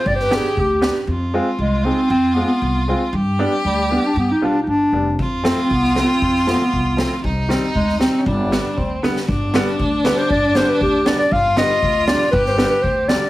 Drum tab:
SD |-oo---o-|--------|--------|--------|
BD |o---o---|--------|--------|--------|

SD |--------|--o--oo-|-oo---o-|--o--oo-|
BD |--------|o---o---|o---o---|o---o---|

SD |--o---oo|--o---oo|--o---oo|--o---oo|
BD |o---o---|o---o---|o---o---|o---o---|

SD |-oo---o-|
BD |o---o---|